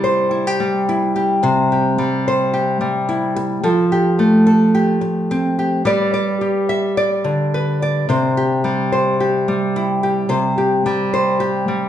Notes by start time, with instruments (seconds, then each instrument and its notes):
Already playing: nylon-string guitar C3 G3 E4 G4
0.04 nylon-string guitar C5
0.31 nylon-string guitar E4
0.47 nylon-string guitar G4
0.60 nylon-string guitar G3
0.89 nylon-string guitar E4
1.16 nylon-string guitar G4
1.43 nylon-string guitar C3 C5
1.72 nylon-string guitar G4
1.98 nylon-string guitar G3
2.28 nylon-string guitar C5
2.54 nylon-string guitar G4
2.81 nylon-string guitar G3
3.09 nylon-string guitar E4
3.36 muted nylon-string guitar stroke
3.63 nylon-string guitar F3 A4
3.92 nylon-string guitar G4
4.19 nylon-string guitar A3
4.47 nylon-string guitar A4
4.75 nylon-string guitar G4
5.01 muted nylon-string guitar stroke
5.31 nylon-string guitar C4
5.59 nylon-string guitar G4
5.85 nylon-string guitar G3 G4 B4 D5
6.14 nylon-string guitar D5
6.41 nylon-string guitar G4
6.69 nylon-string guitar E5
6.97 nylon-string guitar D5
7.24 nylon-string guitar D3
7.54 nylon-string guitar B4
7.82 nylon-string guitar D5
8.09 nylon-string guitar C3 C5
8.37 nylon-string guitar G4
8.64 nylon-string guitar G3
8.92 nylon-string guitar C5
9.20 nylon-string guitar G4
9.48 nylon-string guitar G3
9.76 nylon-string guitar E4
10.03 nylon-string guitar G4
10.29 nylon-string guitar C3 C5
10.58 nylon-string guitar G4
10.86 nylon-string guitar G3
11.14 nylon-string guitar C5
11.40 nylon-string guitar G4
11.68 nylon-string guitar G3